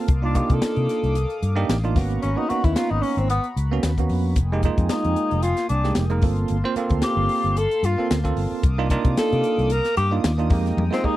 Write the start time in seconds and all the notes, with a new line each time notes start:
Already playing: A#3 F5
0.08 C2 D6 D#6, kick, closed hi-hat
0.22 A#3 D4 D#4 F4
0.35 A#3 D4 D#4 F4 G4, kick, closed hi-hat
0.49 C3, kick, closed hi-hat
0.54 A4
0.62 muted fretless electric bass stroke, snare, closed hi-hat
0.76 C3, closed hi-hat
0.89 snare, closed hi-hat
1.03 C2, closed hi-hat
1.15 closed hi-hat
1.30 closed hi-hat
1.43 G2, closed hi-hat
1.56 A#3 D4 D#4 G4
1.69 A1, snare, closed hi-hat
1.84 A#3 D4 D#4 F4, closed hi-hat
1.96 G#1 A#3 B3 C#4 F#4 F#5 A#5 B5 C#6, kick, snare, open hi-hat
2.10 closed hi-hat
2.22 G#1 C#4, closed hi-hat
2.36 A#3 B3 C#4 D#4 F#4
2.49 A#3 B3 C#4 D#4 F#4, muted fretless electric bass stroke, closed hi-hat
2.64 D#2 E4, kick, closed hi-hat
2.76 F4, snare, closed hi-hat
2.91 G#1 D#4
3.01 C#4, open hi-hat
3.17 G#1 C4, closed hi-hat
3.30 B3, closed hi-hat
3.44 closed hi-hat
3.56 C#2, closed hi-hat
3.72 A#3 B3 C#4 F#4
3.83 D#2, snare, closed hi-hat
3.98 A#3 B3 C#4 F#4, kick, closed hi-hat
4.09 F2, open hi-hat
4.36 F1 A#3 G5 G#5 D#6, kick, closed hi-hat
4.52 G#3 A#3 D#4 G4
4.63 G#3 A#3 D#4 F4, kick, closed hi-hat
4.78 F2, kick, closed hi-hat
4.89 D#4, muted fretless electric bass stroke, snare, closed hi-hat
5.04 F2, closed hi-hat
5.16 closed hi-hat
5.31 F1, closed hi-hat
5.43 F4, closed hi-hat
5.57 snare, closed hi-hat
5.69 C2 D4, closed hi-hat
5.84 G#3 A#3 D#4 G4, snare
5.95 F1, snare, closed hi-hat
6.10 G#3 A#3 D#4 A#4, closed hi-hat
6.22 G1 A#3 C4 F4 A4 F5 A5 C6, kick, open hi-hat
6.36 closed hi-hat
6.48 G1, closed hi-hat
6.64 A#3 C4 F4 C5
6.76 A#3 C4 F4 A4, muted fretless electric bass stroke, closed hi-hat
6.89 D2, kick, closed hi-hat
7.02 G4, snare, closed hi-hat
7.17 G1
7.29 open hi-hat
7.44 G1, closed hi-hat
7.57 A4, closed hi-hat
7.71 closed hi-hat
7.83 G2 F4, closed hi-hat
7.98 A#3 C4 F4 A4, muted fretless electric bass stroke
8.11 D2, snare, closed hi-hat
8.24 A#3 C4 F4 A4, kick, closed hi-hat
8.36 G1, open hi-hat
8.52 muted fretless electric bass stroke
8.63 C2 F5 D6 D#6, kick, closed hi-hat
8.78 A#3 D4 D#4 F4
8.90 A#3 D4 D#4 F4, kick, closed hi-hat
9.05 C3, kick, closed hi-hat
9.17 A4, muted fretless electric bass stroke, snare, closed hi-hat
9.32 C3, closed hi-hat
9.44 closed hi-hat
9.58 C2, closed hi-hat
9.70 A#4, closed hi-hat
9.85 snare, closed hi-hat
9.97 G2 G4, closed hi-hat
10.11 A#3 D4 D#4 F4
10.24 D#2, snare, closed hi-hat
10.38 A#3 D4 D#4 F4, closed hi-hat
10.50 F2 G#3 A#3 D#4 G4 G5 A#5, kick, open hi-hat
10.66 snare, closed hi-hat
10.77 F2, high tom
10.91 G#3 A#3 C4 D#4 F4, snare
11.04 G#3 A#3 D#4 G4, muted fretless electric bass stroke, kick